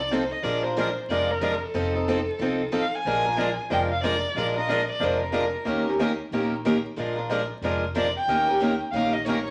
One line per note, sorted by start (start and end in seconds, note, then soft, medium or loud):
0.00 0.30 C2 medium
0.00 0.14 D5 medium
0.11 0.22 F3 medium
0.11 0.22 C4 medium
0.11 0.23 D#4 medium
0.11 0.23 A4 medium
0.11 0.33 C5 medium
0.31 0.44 D#5 medium
0.43 0.96 A#1 medium
0.43 0.62 F3 medium
0.43 0.63 G#3 medium
0.43 0.63 D4 medium
0.43 0.63 F4 medium
0.43 0.63 A#4 medium
0.43 0.64 D5 medium
0.63 0.77 D4 soft
0.63 0.77 F4 soft
0.63 0.76 A#4 soft
0.63 0.96 C5 medium
0.78 0.88 F3 medium
0.78 0.88 G#3 medium
0.78 0.89 D4 medium
0.78 0.89 F4 medium
0.78 0.89 A#4 medium
1.09 1.61 F1 medium
1.09 1.30 F3 medium
1.09 1.31 G#3 medium
1.09 1.31 D4 medium
1.09 1.31 F4 medium
1.09 1.31 A#4 medium
1.09 1.32 D5 medium
1.31 1.66 A#4 medium
1.41 1.53 F3 medium
1.41 1.53 G#3 medium
1.41 1.53 D4 medium
1.41 1.53 F4 medium
1.41 1.53 A#4 medium
1.64 2.74 A4 medium
1.74 2.27 F1 medium
1.74 1.94 F3 medium
1.74 1.94 C4 medium
1.74 1.94 D#4 medium
1.74 1.92 A4 medium
1.94 2.07 C4 soft
1.94 2.07 D#4 soft
1.94 2.06 A4 medium
2.08 2.19 F3 medium
2.08 2.19 C4 medium
2.08 2.19 D#4 medium
2.08 2.19 A4 medium
2.39 2.66 C2 medium
2.39 2.61 F3 medium
2.39 2.61 C4 medium
2.39 2.62 D#4 medium
2.39 2.62 A4 medium
2.72 2.84 F3 medium
2.72 2.83 C4 medium
2.72 2.83 D#4 medium
2.72 2.84 A4 medium
2.72 2.96 F5 medium
2.95 3.59 G#5 loud
3.05 3.57 A#1 medium
3.05 3.25 F3 medium
3.05 3.25 G#3 medium
3.05 3.25 D4 medium
3.05 3.25 F4 medium
3.05 3.24 A#4 medium
3.26 3.37 D4 soft
3.26 3.36 F4 soft
3.26 3.37 A#4 medium
3.37 3.48 F3 medium
3.37 3.49 G#3 medium
3.37 3.49 D4 medium
3.37 3.49 F4 medium
3.37 3.49 A#4 medium
3.70 4.23 F1 medium
3.70 3.91 F3 medium
3.70 3.91 G#3 medium
3.70 3.91 D4 medium
3.70 3.91 F4 medium
3.70 3.92 A#4 medium
3.70 3.81 G5 medium
3.92 4.03 F5 medium
4.03 4.14 F3 medium
4.03 4.15 G#3 medium
4.03 4.15 D4 medium
4.03 4.14 F4 medium
4.03 4.15 A#4 medium
4.03 4.34 D5 medium
4.35 4.87 A#1 medium
4.35 4.55 F3 medium
4.35 4.55 G#3 medium
4.35 4.55 D4 medium
4.35 4.55 F4 medium
4.35 4.54 A#4 medium
4.35 4.46 D5 medium
4.56 4.68 D4 soft
4.56 4.68 F4 soft
4.56 4.68 A#4 medium
4.56 4.87 D#5 medium
4.68 4.79 F3 medium
4.68 4.80 G#3 medium
4.68 4.80 D4 medium
4.68 4.80 F4 medium
4.68 4.80 A#4 medium
4.91 5.06 D5 medium
4.99 5.52 F1 medium
4.99 5.21 F3 medium
4.99 5.21 G#3 medium
4.99 5.21 D4 medium
4.99 5.21 F4 medium
4.99 5.22 A#4 medium
5.04 5.23 C5 medium
5.24 5.84 A#4 medium
5.32 5.44 F3 medium
5.32 5.44 G#3 medium
5.32 5.44 D4 medium
5.32 5.44 F4 medium
5.32 5.45 A#4 medium
5.65 6.18 D#2 medium
5.65 5.85 D#3 medium
5.65 5.85 A#3 medium
5.65 5.85 C#4 medium
5.65 5.86 G4 medium
5.65 5.86 A#4 medium
5.87 5.99 C#4 soft
5.87 5.99 G4 soft
5.87 5.99 A#4 soft
5.99 6.10 D#3 medium
5.99 6.10 A#3 medium
5.99 6.10 C#4 medium
5.99 6.10 G4 medium
5.99 6.11 A#4 medium
6.31 6.84 A#1 medium
6.31 6.53 D#3 medium
6.31 6.53 A#3 medium
6.31 6.53 C#4 medium
6.31 6.53 G4 medium
6.31 6.53 A#4 medium
6.65 6.76 D#3 medium
6.65 6.76 A#3 medium
6.65 6.76 C#4 medium
6.65 6.76 G4 medium
6.65 6.76 A#4 medium
6.97 7.49 A#1 medium
6.97 7.17 F3 medium
6.97 7.17 G#3 medium
6.97 7.17 D4 medium
6.97 7.17 F4 medium
6.97 7.16 A#4 medium
7.17 7.30 D4 soft
7.17 7.29 F4 soft
7.17 7.29 A#4 medium
7.29 7.41 F3 medium
7.29 7.41 G#3 medium
7.29 7.41 D4 medium
7.29 7.41 F4 medium
7.29 7.41 A#4 medium
7.62 8.14 F1 medium
7.62 7.83 F3 medium
7.62 7.84 G#3 medium
7.62 7.84 D4 medium
7.62 7.84 F4 medium
7.62 7.84 A#4 medium
7.96 8.06 F3 medium
7.96 8.07 G#3 medium
7.96 8.06 D4 medium
7.96 8.07 F4 medium
7.96 8.07 A#4 medium
7.96 8.15 D5 medium
8.16 8.77 G5 medium
8.27 8.80 D#2 medium
8.27 8.47 D#3 medium
8.27 8.47 A#3 medium
8.27 8.48 C#4 medium
8.27 8.47 G4 medium
8.27 8.47 A#4 medium
8.48 8.61 C#4 soft
8.48 8.60 G4 soft
8.48 8.60 A#4 medium
8.62 8.72 D#3 medium
8.62 8.72 A#3 medium
8.62 8.72 C#4 medium
8.62 8.72 G4 medium
8.62 8.73 A#4 medium
8.92 9.45 A#1 medium
8.92 9.15 D#3 medium
8.92 9.15 A#3 medium
8.92 9.15 G4 medium
8.92 9.14 F5 medium
8.96 9.15 C#4 medium
8.96 9.15 A#4 medium
9.13 9.26 D#5 medium
9.25 9.38 D#3 medium
9.25 9.38 A#3 medium
9.25 9.38 C#4 medium
9.25 9.38 G4 medium
9.25 9.44 C#5 medium
9.29 9.38 A#4 medium
9.45 9.51 C#5 medium